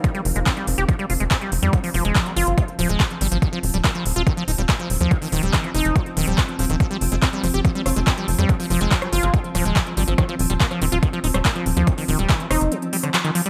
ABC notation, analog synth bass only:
X:1
M:4/4
L:1/16
Q:1/4=142
K:Fm
V:1 name="Analog synth bass" clef=bass
z2 F,,, F,,, z2 F,,, F,,, z2 F,,, F,,, z2 F,,, F,, | z2 F,,, F,,, z2 G,,, G,,, z2 E,,, E,,, z2 A,,, A,,, | z2 E,,, E,,, z2 E,,, E,,, z2 E,,, E,,, z2 E,,, E,, | z2 E,,, E,,, z2 F,,, F,,, z2 E,,, E,,, z2 E,,, E,,, |
z2 F,,, F,,, z2 F,,, F,,, z2 F,,, F,,, z2 F,,, F,, | z2 F,,, F,,, z2 G,,, G,,, z2 E,,, E,,, z2 A,,, A,,, | z2 E,,, E,,, z2 E,,, E,,, z2 E,,, E,,, z2 E,,, E,, | z2 E,,, E,,, z2 F,,, F,,, z8 |]